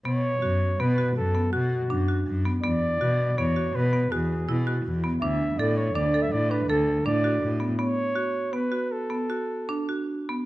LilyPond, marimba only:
\new Staff \with { instrumentName = "Marimba" } { \time 7/4 \key b \dorian \tempo 4 = 162 b4 fis'4 b8 fis'4 b8 fis'4 d'8 fis'4 b8 | b4 fis'4 b8 fis'4 b8 fis'4 e'8 fis'4 b8 | d'4 a'4 d'8 a'4 d'8 a'4 d'8 fis'4 b8 | b4 fis'4 b8 fis'4 b8 fis'4 d'8 fis'4 b8 | }